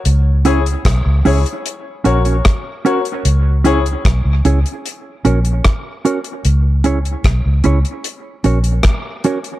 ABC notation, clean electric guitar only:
X:1
M:4/4
L:1/16
Q:1/4=75
K:C#dor
V:1 name="Clean electric guitar"
z2 [CEGc] z3 [CEGc] z3 [CFAc] [CFAc] z2 [CFAc] z | z2 [CEGc] z3 [CEGc] z3 [CFAc] z3 [CFAc] z | z2 [CEGc] z3 [CEGc] z3 [CFAc] z3 [CFAc] z |]